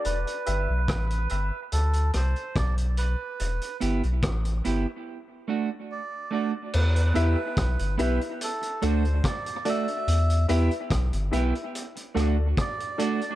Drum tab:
CC |----------------|----------------|x---------------|----------------|
HH |xxx-xxx-xxxxxxx-|xxxxxxx---------|-xx-xxxxxxxxxxxx|xxxxxxxxxxx-xxxx|
SD |----r-----r-r---|----r-----------|----r-------r---|----r-----r-r---|
BD |----o-------o---|----o-----------|----o-------o---|----o-------o---|